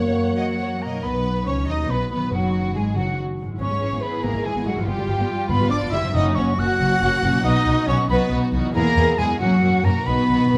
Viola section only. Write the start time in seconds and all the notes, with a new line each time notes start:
Already playing: C#5
1.04 B3
1.46 C#4
1.67 D#4
1.88 B3
2.11 B3
2.32 F#3
2.75 G#3
2.97 F#3
3.61 B3 E4
3.71 G#3
3.82 E3
3.93 B3
4.24 B3
4.34 G#3
4.46 E3
4.55 B3
4.66 G#3
4.77 E3
4.87 B3 F4
4.98 G3
5.09 F3
5.19 B3
5.49 B3
5.60 G3
5.71 F3
5.82 B3
5.93 G3
6.04 F3
6.15 A#3 C#4
6.37 A#3 C#4
6.58 A#3 C#4
6.80 A#3 C#4
7.01 A#3 C#4
7.23 A#3 C#4
7.44 B3 D#4
7.67 B3 D#4
7.88 B3 D#4
8.10 B3 D#4
8.32 B3 D#4
8.52 B3 D#4
8.75 B3 E4
8.95 B3 E4
9.19 B3 E4
9.41 A#3 C#4
9.62 A#3 C#4
9.84 A#3 C#4
10.07 B3 D#4
10.30 B3 D#4
10.51 B3 D#4